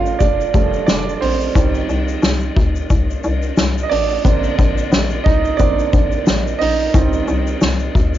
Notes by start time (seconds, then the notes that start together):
Already playing: G1 F3 G3 A3 D#4 F4 D#5 F5
0.06 shaker
0.19 F1 D4 D5, kick, ride, shaker
0.41 shaker
0.54 F1 F3 G3 A3, kick, ride, shaker
0.73 shaker
0.86 F1 D4 D5, snare, ride, shaker
1.09 shaker
1.14 D5
1.21 A#1 C4 C5, open hi-hat, ride
1.41 shaker
1.54 C2 D#3 G3 C4, kick, hi-hat pedal, ride, shaker
1.75 shaker
1.89 C2, ride, shaker
2.08 shaker
2.22 C2, snare, ride, shaker
2.41 shaker
2.56 D2, kick, ride
2.76 shaker
2.90 C2, kick, ride, shaker
3.10 shaker
3.23 C2, ride, shaker
3.42 shaker
3.57 C2, snare, ride, shaker
3.78 shaker
3.83 D#5
3.90 A1 D4 D5, open hi-hat, ride
4.10 shaker
4.24 A#1 D3 A#3 C4, kick, hi-hat pedal, ride, shaker
4.44 shaker
4.58 A#1, kick, ride, shaker
4.78 shaker
4.92 A#1, snare, ride, shaker
5.10 shaker
5.24 C2 D#4 D#5, kick, ride
5.45 shaker
5.57 A#1 D3 A#3 C4 D4 D5, kick, ride, shaker
5.79 shaker
5.93 A#1, kick, ride, shaker
6.12 shaker
6.26 A#1, snare, ride, shaker
6.47 shaker
6.58 A#1 D#4 D#5, open hi-hat, ride
6.79 shaker
6.93 C2 D#3 G3 C4, kick, hi-hat pedal, ride, shaker
7.13 shaker
7.28 C2, ride, shaker
7.47 shaker
7.61 C2, snare, ride, shaker
7.79 shaker
7.95 D2, kick, ride, shaker
8.14 shaker